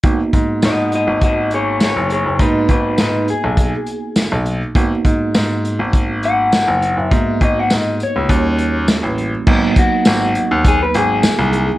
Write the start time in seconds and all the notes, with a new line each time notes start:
0.03 G#1 A#3 B3 D#4 F#4, kick, closed hi-hat
0.33 G#2, kick, closed hi-hat
0.62 G#2 F#4 D#5, snare, closed hi-hat, tambourine
0.92 F#4 D#5, closed hi-hat
1.07 G#1
1.21 F#4 D#5, kick, closed hi-hat
1.51 G#4, closed hi-hat
1.55 C#5
1.80 G#4 C#5, snare, closed hi-hat, tambourine
1.96 F#1
2.10 G#4 C#5, closed hi-hat
2.26 F#1
2.39 G#2 A#3 B3 D#4 F#4 B4, kick, closed hi-hat
2.69 G#1 D#4 B4, kick, closed hi-hat
2.98 G#2 D#4 B4, snare, closed hi-hat, tambourine
3.28 G#4, closed hi-hat
3.44 B1
3.57 kick, closed hi-hat
3.87 closed hi-hat
4.16 G#1, snare, closed hi-hat, tambourine
4.32 B1
4.46 closed hi-hat
4.75 G#1 A#3 B3 D#4 F#4, kick, closed hi-hat
5.05 G#2, kick, closed hi-hat
5.35 G#2, snare, closed hi-hat, tambourine
5.65 closed hi-hat
5.79 G#1
5.93 kick, closed hi-hat
6.23 F#5, closed hi-hat
6.53 snare, closed hi-hat, tambourine
6.68 F#1
6.82 closed hi-hat
6.97 F#1
7.02 E5
7.11 G#2 A#3 B3 D#4 F#4, kick, closed hi-hat
7.41 G#1 D#5, kick, closed hi-hat
7.59 F#5
7.70 G#2 D#5, snare, closed hi-hat, tambourine
8.00 C#5, closed hi-hat
8.16 C#2
8.29 D#2 G3 A#3 C#4 F#4, kick, closed hi-hat
8.58 closed hi-hat
8.88 snare, closed hi-hat, tambourine
9.03 A1
9.18 closed hi-hat
9.47 G#1 F#3 A#3 B3 D#4, kick, crash
9.76 F#4, kick, closed hi-hat
10.05 G#1, snare, closed hi-hat, tambourine
10.35 closed hi-hat
10.51 D#2
10.65 G#4, kick, closed hi-hat
10.83 B4
10.94 G#1 G#4, closed hi-hat
11.23 snare, closed hi-hat, tambourine
11.39 C2
11.53 closed hi-hat